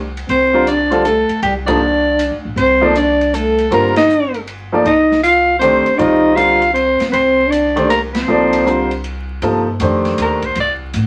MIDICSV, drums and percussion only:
0, 0, Header, 1, 2, 480
1, 0, Start_track
1, 0, Tempo, 380469
1, 365, Time_signature, 3, 2, 24, 8
1, 13963, End_track
2, 0, Start_track
2, 0, Title_t, "Drums"
2, 215, Note_on_c, 9, 51, 39
2, 341, Note_off_c, 9, 51, 0
2, 367, Note_on_c, 9, 51, 48
2, 493, Note_off_c, 9, 51, 0
2, 846, Note_on_c, 9, 44, 38
2, 846, Note_on_c, 9, 51, 54
2, 972, Note_off_c, 9, 44, 0
2, 972, Note_off_c, 9, 51, 0
2, 1156, Note_on_c, 9, 51, 36
2, 1282, Note_off_c, 9, 51, 0
2, 1325, Note_on_c, 9, 44, 45
2, 1325, Note_on_c, 9, 51, 50
2, 1451, Note_off_c, 9, 44, 0
2, 1451, Note_off_c, 9, 51, 0
2, 1630, Note_on_c, 9, 51, 39
2, 1756, Note_off_c, 9, 51, 0
2, 1798, Note_on_c, 9, 51, 50
2, 1924, Note_off_c, 9, 51, 0
2, 2116, Note_on_c, 9, 51, 65
2, 2119, Note_on_c, 9, 36, 74
2, 2242, Note_off_c, 9, 51, 0
2, 2245, Note_off_c, 9, 36, 0
2, 2764, Note_on_c, 9, 44, 51
2, 2764, Note_on_c, 9, 51, 55
2, 2891, Note_off_c, 9, 44, 0
2, 2891, Note_off_c, 9, 51, 0
2, 3247, Note_on_c, 9, 51, 58
2, 3374, Note_off_c, 9, 51, 0
2, 3727, Note_on_c, 9, 44, 47
2, 3727, Note_on_c, 9, 51, 53
2, 3853, Note_off_c, 9, 44, 0
2, 3853, Note_off_c, 9, 51, 0
2, 4051, Note_on_c, 9, 51, 38
2, 4177, Note_off_c, 9, 51, 0
2, 4211, Note_on_c, 9, 44, 52
2, 4211, Note_on_c, 9, 51, 60
2, 4338, Note_off_c, 9, 44, 0
2, 4338, Note_off_c, 9, 51, 0
2, 4520, Note_on_c, 9, 51, 39
2, 4646, Note_off_c, 9, 51, 0
2, 4690, Note_on_c, 9, 51, 52
2, 4816, Note_off_c, 9, 51, 0
2, 4998, Note_on_c, 9, 51, 61
2, 5004, Note_on_c, 9, 38, 74
2, 5124, Note_off_c, 9, 51, 0
2, 5131, Note_off_c, 9, 38, 0
2, 5165, Note_on_c, 9, 44, 49
2, 5291, Note_off_c, 9, 44, 0
2, 5479, Note_on_c, 9, 51, 36
2, 5605, Note_off_c, 9, 51, 0
2, 5645, Note_on_c, 9, 51, 48
2, 5771, Note_off_c, 9, 51, 0
2, 6125, Note_on_c, 9, 51, 48
2, 6251, Note_off_c, 9, 51, 0
2, 6452, Note_on_c, 9, 38, 35
2, 6578, Note_off_c, 9, 38, 0
2, 6605, Note_on_c, 9, 44, 50
2, 6605, Note_on_c, 9, 51, 55
2, 6731, Note_off_c, 9, 44, 0
2, 6731, Note_off_c, 9, 51, 0
2, 7082, Note_on_c, 9, 44, 46
2, 7082, Note_on_c, 9, 51, 56
2, 7208, Note_off_c, 9, 44, 0
2, 7208, Note_off_c, 9, 51, 0
2, 7392, Note_on_c, 9, 51, 39
2, 7519, Note_off_c, 9, 51, 0
2, 7560, Note_on_c, 9, 51, 51
2, 7686, Note_off_c, 9, 51, 0
2, 8041, Note_on_c, 9, 44, 39
2, 8041, Note_on_c, 9, 51, 54
2, 8167, Note_off_c, 9, 44, 0
2, 8167, Note_off_c, 9, 51, 0
2, 8349, Note_on_c, 9, 51, 39
2, 8475, Note_off_c, 9, 51, 0
2, 8521, Note_on_c, 9, 51, 48
2, 8647, Note_off_c, 9, 51, 0
2, 8830, Note_on_c, 9, 51, 41
2, 8837, Note_on_c, 9, 38, 43
2, 8956, Note_off_c, 9, 51, 0
2, 8963, Note_off_c, 9, 38, 0
2, 8999, Note_on_c, 9, 51, 52
2, 9125, Note_off_c, 9, 51, 0
2, 9490, Note_on_c, 9, 44, 43
2, 9490, Note_on_c, 9, 51, 54
2, 9616, Note_off_c, 9, 44, 0
2, 9616, Note_off_c, 9, 51, 0
2, 9797, Note_on_c, 9, 51, 41
2, 9924, Note_off_c, 9, 51, 0
2, 9969, Note_on_c, 9, 44, 51
2, 9969, Note_on_c, 9, 51, 60
2, 10095, Note_off_c, 9, 44, 0
2, 10095, Note_off_c, 9, 51, 0
2, 10277, Note_on_c, 9, 51, 62
2, 10283, Note_on_c, 9, 38, 67
2, 10403, Note_off_c, 9, 51, 0
2, 10409, Note_off_c, 9, 38, 0
2, 10760, Note_on_c, 9, 51, 61
2, 10886, Note_off_c, 9, 51, 0
2, 10931, Note_on_c, 9, 44, 47
2, 11057, Note_off_c, 9, 44, 0
2, 11240, Note_on_c, 9, 51, 39
2, 11366, Note_off_c, 9, 51, 0
2, 11404, Note_on_c, 9, 51, 48
2, 11531, Note_off_c, 9, 51, 0
2, 11884, Note_on_c, 9, 51, 45
2, 12011, Note_off_c, 9, 51, 0
2, 12360, Note_on_c, 9, 44, 49
2, 12360, Note_on_c, 9, 51, 53
2, 12486, Note_off_c, 9, 44, 0
2, 12486, Note_off_c, 9, 51, 0
2, 12679, Note_on_c, 9, 51, 42
2, 12685, Note_on_c, 9, 38, 27
2, 12805, Note_off_c, 9, 51, 0
2, 12811, Note_off_c, 9, 38, 0
2, 12841, Note_on_c, 9, 44, 52
2, 12841, Note_on_c, 9, 51, 65
2, 12967, Note_off_c, 9, 44, 0
2, 12967, Note_off_c, 9, 51, 0
2, 13149, Note_on_c, 9, 51, 44
2, 13156, Note_on_c, 9, 36, 45
2, 13276, Note_off_c, 9, 51, 0
2, 13283, Note_off_c, 9, 36, 0
2, 13315, Note_on_c, 9, 51, 54
2, 13441, Note_off_c, 9, 51, 0
2, 13796, Note_on_c, 9, 44, 54
2, 13796, Note_on_c, 9, 51, 60
2, 13922, Note_off_c, 9, 44, 0
2, 13922, Note_off_c, 9, 51, 0
2, 13963, End_track
0, 0, End_of_file